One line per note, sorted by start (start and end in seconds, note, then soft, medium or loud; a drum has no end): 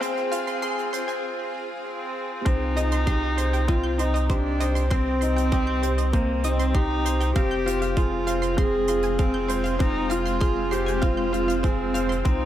0.00 1.24 F1 medium
0.00 2.42 C4 medium
0.00 2.45 C4 loud
0.00 0.32 F4 medium
0.00 2.42 F4 medium
0.00 0.63 G#4 medium
0.00 2.43 G#4 loud
0.00 0.93 C5 medium
0.00 0.12 C5 medium
0.00 closed hi-hat medium
0.17 closed hi-hat soft
0.32 0.61 F4 medium
0.32 0.38 F5 loud
0.32 closed hi-hat medium
0.47 0.53 C6 medium
0.47 closed hi-hat soft
0.62 0.80 G#4 medium
0.62 0.73 C6 loud
0.62 closed hi-hat medium
0.79 closed hi-hat soft
0.93 1.22 C5 medium
0.93 1.03 C6 medium
0.93 closed hi-hat medium
1.08 1.14 G#5 medium
1.08 closed hi-hat soft
1.84 2.48 C4 loud
2.45 7.33 C2 medium
2.45 12.45 C4 loud
2.45 2.63 C4 loud
2.45 3.70 D#4 loud
2.45 7.32 G4 loud
2.45 2.56 C5 medium
2.45 kick loud
2.45 closed hi-hat soft
2.76 3.05 D#4 medium
2.76 2.83 D#5 loud
2.76 closed hi-hat medium
2.91 2.98 C6 medium
2.91 closed hi-hat medium
3.06 3.24 G4 medium
3.06 3.17 C6 loud
3.06 kick loud
3.06 closed hi-hat medium
3.37 3.67 C5 medium
3.37 3.48 C6 medium
3.37 closed hi-hat medium
3.53 3.59 G5 medium
3.53 closed hi-hat medium
3.68 3.86 C4 medium
3.68 3.99 F4 loud
3.68 3.79 D#5 loud
3.68 kick loud
3.68 closed hi-hat soft
3.83 3.94 G6 medium
3.98 4.30 D#4 loud
3.98 4.28 D#4 medium
3.98 4.14 C5 medium
3.98 closed hi-hat medium
4.14 4.20 D#5 medium
4.14 closed hi-hat medium
4.29 4.90 D4 loud
4.29 4.47 G4 medium
4.29 4.40 C5 medium
4.29 kick loud
4.29 closed hi-hat soft
4.60 4.89 C5 medium
4.60 4.67 D#5 loud
4.60 closed hi-hat medium
4.75 4.82 C6 medium
4.75 closed hi-hat medium
4.91 6.14 C4 loud
4.91 5.09 C4 medium
4.91 5.01 C6 loud
4.91 kick loud
4.91 closed hi-hat soft
5.21 5.51 D#4 medium
5.21 5.32 C6 medium
5.21 closed hi-hat medium
5.36 5.43 G5 medium
5.36 closed hi-hat medium
5.52 5.70 G4 medium
5.52 5.62 D#5 loud
5.52 kick loud
5.52 closed hi-hat medium
5.67 5.78 G6 medium
5.83 5.97 C5 medium
5.83 6.12 C5 medium
5.83 closed hi-hat medium
5.98 6.04 D#5 medium
5.98 closed hi-hat medium
6.13 6.45 A#3 medium
6.13 6.31 C4 medium
6.13 6.24 C5 medium
6.13 kick loud
6.13 closed hi-hat medium
6.44 6.76 C4 loud
6.44 6.73 D#4 medium
6.44 6.51 D#5 loud
6.44 closed hi-hat medium
6.59 6.66 C6 medium
6.59 closed hi-hat medium
6.74 7.35 D#4 loud
6.74 6.92 G4 medium
6.74 6.85 C6 loud
6.74 kick loud
6.74 closed hi-hat soft
7.05 7.34 C5 medium
7.05 7.16 C6 medium
7.05 closed hi-hat medium
7.21 7.27 G5 medium
7.21 closed hi-hat medium
7.35 12.22 F1 medium
7.35 12.22 G#3 loud
7.35 7.53 C4 loud
7.35 12.21 F4 medium
7.35 7.98 G4 loud
7.35 7.46 F5 loud
7.35 kick loud
7.35 closed hi-hat soft
7.51 7.62 G6 medium
7.66 7.95 F4 medium
7.66 7.81 C5 medium
7.66 closed hi-hat medium
7.82 7.88 F5 medium
7.82 closed hi-hat medium
7.97 8.59 F4 loud
7.97 8.14 G#4 medium
7.97 8.07 C5 medium
7.97 kick loud
7.97 closed hi-hat soft
8.27 8.56 C5 medium
8.27 8.34 F5 loud
8.27 closed hi-hat medium
8.42 8.49 C6 medium
8.42 closed hi-hat medium
8.57 8.75 C4 medium
8.57 9.21 G#4 loud
8.57 8.69 C6 loud
8.57 kick loud
8.57 closed hi-hat soft
8.87 9.18 F4 medium
8.87 8.99 C6 medium
8.87 closed hi-hat medium
9.02 9.10 G#5 medium
9.02 closed hi-hat medium
9.18 9.80 C4 loud
9.18 9.37 G#4 medium
9.18 9.30 F5 loud
9.18 kick loud
9.18 closed hi-hat soft
9.34 9.45 G6 medium
9.48 9.64 C5 medium
9.48 9.79 C5 medium
9.48 closed hi-hat medium
9.64 9.71 F5 medium
9.64 closed hi-hat medium
9.79 9.98 C4 medium
9.79 10.12 D#4 loud
9.79 9.90 C5 medium
9.79 kick loud
9.79 closed hi-hat soft
10.10 10.73 F4 loud
10.10 10.40 F4 medium
10.10 10.17 F5 loud
10.10 closed hi-hat medium
10.26 10.32 C6 medium
10.26 closed hi-hat medium
10.41 10.59 G#4 medium
10.41 10.52 C6 loud
10.41 kick loud
10.41 closed hi-hat medium
10.71 11.04 G4 loud
10.71 11.01 C5 medium
10.71 10.82 C6 medium
10.71 closed hi-hat medium
10.86 10.93 G#5 medium
10.86 closed hi-hat medium
11.02 11.20 C4 medium
11.02 11.67 F4 loud
11.02 11.13 F5 medium
11.02 kick loud
11.02 closed hi-hat soft
11.17 11.28 G6 medium
11.33 11.62 F4 medium
11.33 11.48 C5 medium
11.33 closed hi-hat medium
11.48 11.55 F5 medium
11.48 closed hi-hat medium
11.63 12.28 C4 loud
11.63 11.82 G#4 medium
11.63 11.74 C5 medium
11.63 kick loud
11.63 closed hi-hat soft
11.94 12.24 C5 medium
11.94 12.01 F5 loud
11.94 closed hi-hat medium
12.09 12.16 C6 medium
12.09 closed hi-hat soft
12.25 12.45 C2 medium
12.25 12.43 C4 medium
12.25 12.45 D#4 loud
12.25 12.36 C5 medium
12.25 kick loud
12.25 closed hi-hat soft